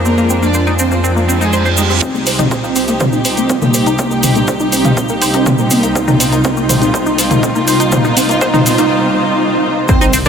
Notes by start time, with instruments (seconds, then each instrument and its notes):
Already playing: detuned saw bass F2, string section F3 G#3 D4, ambient pad F4 C5 G#5
0.05 analog synth lead A#3, synth arpeggio sound C4, violin section A#4, shaker
0.18 synth arpeggio sound A#3, shaker
0.30 synth arpeggio sound C4, shaker
0.42 synth arpeggio sound A#3, analog synth lead D4, violin section D5, shaker
0.54 synth arpeggio sound C5, shaker
0.67 synth arpeggio sound D#4, shaker
0.79 analog synth lead C4, synth arpeggio sound C4, violin section C5, shaker
0.91 synth arpeggio sound A#3, shaker
1.04 synth arpeggio sound C4, reverse cymbal, shaker
1.16 synth arpeggio sound A#3, shaker
1.28 synth arpeggio sound C4, shaker
1.41 analog synth lead G#3, synth arpeggio sound D#4, violin section G#4, shaker
1.53 synth arpeggio sound C5, shaker
1.65 synth arpeggio sound C5, shaker
1.77 analog synth lead G3, synth arpeggio sound D#4, violin section G4, shaker
1.90 synth arpeggio sound C4, shaker
2.02 string section C2 C3 G3 D#4 G4, analog synth lead C4, synth arpeggio sound C4, ambient pad D#4, kick, closed hi-hat, riser, shaker
2.15 synth arpeggio sound A#3, shaker
2.26 synth arpeggio sound C5, open hi-hat, shaker
2.39 analog synth lead C4, synth arpeggio sound D#4, closed hi-hat, mid tom, shaker
2.51 synth arpeggio sound C4, kick, closed hi-hat, shaker
2.63 synth arpeggio sound A#3, analog synth lead C4, shaker
2.71 ambient pad G5
2.76 synth arpeggio sound C4, open hi-hat, shaker
2.88 synth arpeggio sound A#3, closed hi-hat, shaker
3.00 analog synth lead C4, synth arpeggio sound C5, kick, closed hi-hat, mid tom, shaker
3.13 synth arpeggio sound D#4, shaker
3.25 synth arpeggio sound C4, open hi-hat, shaker
3.37 synth arpeggio sound A#3, analog synth lead C4, closed hi-hat, shaker
3.49 synth arpeggio sound C4, kick, closed hi-hat, shaker
3.62 analog synth lead A#3, synth arpeggio sound A#3, mid tom, shaker
3.74 synth arpeggio sound C5, open hi-hat, shaker
3.86 synth arpeggio sound D#4, closed hi-hat, shaker
3.99 analog synth lead A#3, synth arpeggio sound C4, kick, closed hi-hat, shaker
4.11 synth arpeggio sound A#3, shaker
4.23 synth arpeggio sound C4, mid tom, open hi-hat, shaker
4.35 synth arpeggio sound A#3, analog synth lead D4, closed hi-hat, shaker
4.48 synth arpeggio sound C5, kick, closed hi-hat, shaker
4.60 synth arpeggio sound D#4, shaker
4.72 analog synth lead C4, synth arpeggio sound C4, open hi-hat, shaker
4.85 synth arpeggio sound A#3, closed hi-hat, mid tom, shaker
4.97 synth arpeggio sound C4, kick, closed hi-hat, shaker
5.09 synth arpeggio sound A#3, shaker
5.22 synth arpeggio sound C5, open hi-hat, shaker
5.34 analog synth lead C4, synth arpeggio sound D#4, closed hi-hat, shaker
5.46 synth arpeggio sound C4, kick, closed hi-hat, mid tom, shaker
5.58 synth arpeggio sound A#3, shaker
5.70 analog synth lead A#3, synth arpeggio sound C4, open hi-hat, shaker
5.83 synth arpeggio sound A#3, closed hi-hat, shaker
5.95 analog synth lead D#4, string section F4, synth arpeggio sound C5, kick, closed hi-hat, shaker
6.08 synth arpeggio sound D#4, mid tom, shaker
6.20 synth arpeggio sound C4, open hi-hat, shaker
6.32 synth arpeggio sound A#3, analog synth lead D#4, closed hi-hat, shaker
6.44 synth arpeggio sound C4, kick, closed hi-hat, shaker
6.57 synth arpeggio sound A#3, analog synth lead D#4, shaker
6.69 synth arpeggio sound C5, mid tom, open hi-hat, shaker
6.82 synth arpeggio sound D#4, closed hi-hat, shaker
6.94 analog synth lead D#4, synth arpeggio sound C5, kick, closed hi-hat, shaker
7.06 synth arpeggio sound D#4, shaker
7.18 synth arpeggio sound C4, open hi-hat, shaker
7.31 synth arpeggio sound A#3, analog synth lead D#4, closed hi-hat, mid tom, shaker
7.43 synth arpeggio sound C4, kick, closed hi-hat, shaker
7.55 synth arpeggio sound A#3, analog synth lead D#4, shaker
7.68 synth arpeggio sound C5, open hi-hat, shaker
7.80 synth arpeggio sound D#4, closed hi-hat, shaker
7.92 analog synth lead D#4, synth arpeggio sound C5, kick, closed hi-hat, mid tom, shaker
8.04 synth arpeggio sound D#4, shaker
8.17 synth arpeggio sound C4, open hi-hat, shaker
8.29 synth arpeggio sound A#3, analog synth lead D#4, closed hi-hat, shaker
8.41 analog synth lead D#4, synth arpeggio sound C5, kick, closed hi-hat, shaker
8.54 synth arpeggio sound D#4, mid tom, shaker
8.66 synth arpeggio sound C4, open hi-hat, shaker
8.78 synth arpeggio sound A#3, analog synth lead D#4, closed hi-hat, shaker
9.88 string section D#3 G3 C4, analog synth lead C4, synth arpeggio sound C4 C5, violin section C5, kick, cross-stick, closed hi-hat, impact, shaker
10.01 detuned saw bass C2, synth arpeggio sound D#4 D#5, shaker
10.13 detuned saw bass C2, synth arpeggio sound C4 C5, open hi-hat, shaker
10.25 analog synth lead C4, shaker